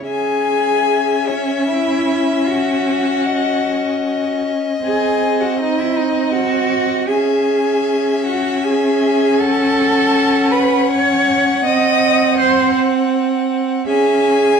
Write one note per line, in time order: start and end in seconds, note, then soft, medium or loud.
0.06 4.80 C#4 medium
0.06 1.29 G#4 medium
0.06 3.27 E5 medium
0.06 1.29 G#5 medium
1.28 1.68 C#4 medium
1.28 1.70 C#5 medium
1.68 2.48 E4 medium
1.68 2.48 E5 medium
2.46 4.44 F#4 medium
2.46 4.44 F#5 medium
3.26 7.09 D#5 medium
4.83 7.05 C4 medium
4.83 5.42 G#4 medium
4.83 5.42 G#5 medium
5.40 5.59 F#4 medium
5.40 5.61 F#5 medium
5.59 5.81 D#4 medium
5.59 5.79 D#5 medium
5.78 5.97 E4 medium
5.78 5.98 E5 medium
5.96 6.32 D#4 medium
5.96 6.34 D#5 medium
6.33 7.10 F#4 loud
6.33 7.07 F#5 medium
7.08 11.61 C#4 medium
7.08 8.25 G#4 medium
7.08 9.40 E5 medium
7.08 8.22 G#5 medium
8.25 8.66 F#4 medium
8.25 8.66 F#5 medium
8.64 9.41 G#4 medium
8.64 9.42 G#5 medium
9.38 10.53 A4 loud
9.38 13.87 F#5 medium
9.38 10.54 A5 loud
10.51 10.90 B4 medium
10.51 10.92 B5 medium
10.88 11.64 C#5 loud
10.88 11.64 C#6 medium
11.65 13.85 C4 medium
11.65 12.37 D#5 loud
11.65 12.38 D#6 loud
12.37 12.74 C5 medium
12.37 12.75 C6 medium
13.87 14.60 C#4 medium
13.87 14.60 G#4 medium
13.87 14.60 E5 medium
13.87 14.60 G#5 loud